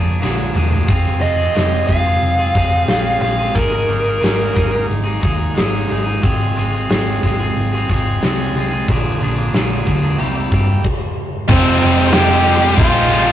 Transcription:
Already playing: F2 F3 A#3 D4 G#4
0.20 A#1 A#2 D3 F3 A#3 D4 G#4, snare
0.54 E1 F3 A#3 D4 G#4, mid tom
0.70 F3 A#3 D4 G#4, floor tom
0.87 F1 F3 C4 F4 G#4, kick, open hi-hat
1.06 snare
1.20 F1 F3 C4 F4 D#5, open hi-hat
1.24 G#4
1.37 C4 F4 G#4
1.53 F1 F3 C4 F4 G#4, open hi-hat
1.57 snare
1.87 F1 F3 C4 F4 G#4 F5, kick, open hi-hat
2.04 C4 F4 G#4
2.21 F1, open hi-hat
2.38 C4 F4 G#4
2.54 F1 F3 C4 F4 G#4, kick, open hi-hat
2.88 A#1 F3 C4 F4 G#4, snare, open hi-hat
3.21 A#1 F3 C4 F4 F5, open hi-hat
3.25 G#4
3.38 C4 F4 G#4
3.55 G#1 G#3 A#3 D#4 G#4 A#4, kick, open hi-hat
3.88 G#1 G#3 A#3 D#4 G#4, open hi-hat
4.04 A#3 D#4 G#4
4.20 G#1 G#3 A#3 D#4 G#4, snare, open hi-hat
4.53 G#1 G#3 A#3 D#4 G#4, kick, open hi-hat
4.71 A#3 D#4 G#4
4.90 G#1, open hi-hat
5.04 A#3 D#4 G#4
5.20 D#2 G#3 A#3 D#4, kick, open hi-hat
5.24 G#4
5.54 G#1 G#3 A#3 D#4 G#4, snare, open hi-hat
5.88 G#1 G#3 A#3 D#4 G#4, open hi-hat
6.04 A#3 D#4 G#4
6.22 G#1 G#3 C4 F4 G#4, kick, open hi-hat
6.55 G#1 G#3 C4 F4 G#4, open hi-hat
6.72 F4 G#4
6.76 C4
6.89 G#1 G#3 C4 F4 G#4, snare, open hi-hat
7.23 G#1 G#3 C4 F4 G#4, kick, open hi-hat
7.39 C4 F4 G#4
7.56 G#1, open hi-hat
7.73 C4 F4 G#4
7.89 G#1 G#3 C4 F4 G#4, kick, open hi-hat
8.21 C2 G#3 C4 F4 G#4, snare, open hi-hat
8.54 C2 G#3 C4 F4, open hi-hat
8.59 G#4
8.71 F4 G#4
8.76 C4
8.87 A#1 A#2 D3 F3 A#3, kick, open hi-hat
8.91 D4 G#4
9.20 A#1 F3 A#3 D4 G#4, open hi-hat
9.36 F3 A#3 D4 G#4
9.53 A#1 A#2 D3 F3 A#3 D4 G#4, snare, open hi-hat
9.85 D2 F3 A#3 D4 G#4, kick, open hi-hat
10.02 F3 A#3 D4 G#4
10.17 C2 C3 G3 A#3 E4 G4, open hi-hat
10.35 A#3 E4 G4
10.51 G2 G3 A#3 E4 G4, kick, open hi-hat
10.84 kick, crash
11.48 F1 F2 C3 F3 G#3 C4 C5, kick, crash
11.81 F1 C3 F3 G#3 C4, crash
11.97 F3 G#3 C4, snare
12.12 F1 F2 C3 F3 G#3 C4 G4 G5, snare, crash
12.30 F3 G#3 C4
12.44 C3 F3 G#3 C4, muted distorted electric guitar stroke, crash
12.61 F3 G#3 C4
12.77 A#1 F4 F5, kick, crash
12.92 F3 G#3 C4
13.10 C3 F3 G#3 C4, crash
13.27 F3 G#3 C4

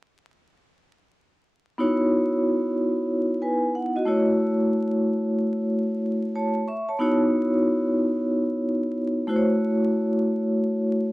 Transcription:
1.78 B3 D#4 E4 F#4 C#5
3.42 B4 G#5
3.75 F#5
3.96 F#4 D#5
4.05 A3 E4 F#4 C#5
6.35 C#5 A5
6.68 E5 C#6
6.89 C#5 A5
6.99 B3 D#4 E4 F#4 C#5
9.27 A3 E4 F#4 C5
9.36 C#5

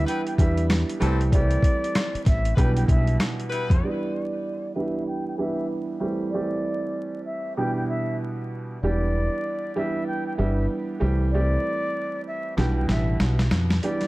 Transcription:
Already playing: E3 G3 B3 D4 G4
0.07 G3 B3 E4 B4 G5, closed hi-hat
0.27 G5, closed hi-hat
0.38 E2 E3 G3 B3 D4 G4 E5, kick, closed hi-hat
0.57 closed hi-hat
0.70 cross-stick, snare, closed hi-hat
0.90 closed hi-hat
1.00 C2 E3 G3 A3 C4 G4 A4, closed hi-hat
1.21 closed hi-hat
1.32 E3 G3 A3 C4 G4 D5, kick, closed hi-hat
1.51 closed hi-hat
1.63 kick, closed hi-hat
1.84 closed hi-hat
1.95 cross-stick, snare, closed hi-hat
2.15 muted fingered electric bass stroke, closed hi-hat
2.25 A1 E5, kick, snare, closed hi-hat
2.45 closed hi-hat
2.55 B1 B2 E3 G3 B3 D4 E4 G4 B4 G5, kick, closed hi-hat
2.77 G5, closed hi-hat
2.88 B1 E5, kick, closed hi-hat
3.07 closed hi-hat
3.20 cross-stick, snare, closed hi-hat
3.40 closed hi-hat
3.50 G3 B3 E4 B4, closed hi-hat
3.70 F2, kick, closed hi-hat
3.83 E3 G3 B3 D4 G4 D5
4.75 E3 G3 B3 D4 G4 E5
5.07 G5
5.28 G5
5.38 E3 G3 B3 D4 G4 E5
6.00 E3 G3 A3 C4 G4
6.31 E3 G3 A3 D5
6.35 C4 G4
7.25 E5
7.57 B2 E3 G3 B3 D4 G4 G5
7.76 G5
7.88 E5
8.83 E1 E3 G3 B3 D4 G4 D5
9.76 E3 G3 B3 D4 G4 E5
10.07 G5
10.27 G5
10.37 G1 E3 G3 B3 D4 G4 E5
11.00 C2 E3 G3 A3 C4 G4
11.32 E3 G3 A3 C4 G4 D5
12.28 E5
12.57 B1 B2 E3 G3 B3 D4 G4 G5, snare
12.77 G5
12.89 A1 E5, snare
13.20 B1, snare
13.39 snare
13.51 F2, snare
13.71 snare
13.83 E3 G3 B3 D4 G4 D5, closed hi-hat
14.01 snare, closed hi-hat

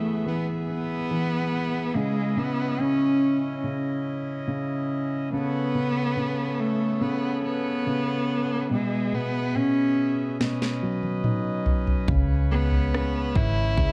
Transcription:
Already playing: E3 A3 B3 G#4 E5
0.26 E3 B3
0.69 B3
1.11 E3
1.94 C#3 G#3 C#4 E4 D#5
2.37 C#3 B3
2.79 C#3 C#4
3.64 C#3
4.47 C#3
5.32 C#3 B3 A4 C#5
5.75 C#3
6.16 C#3
6.60 A3
7.01 C#3 B3
7.45 B3
7.86 C#3
8.70 B2 G#3 G#4 E5
9.12 B2 B3
9.55 B2 C#4
10.39 B2 C#4 B4 D#5, snare
10.62 snare
10.83 F#3
11.03 high tom
11.24 D#4, mid tom
11.66 floor tom
11.87 floor tom
12.08 C#2 C#3 C#5, kick, floor tom
12.51 G#3 B3
12.71 floor tom
12.94 C#3, cross-stick
13.35 G#1 E4, kick
13.77 C#2 G#3, kick, floor tom

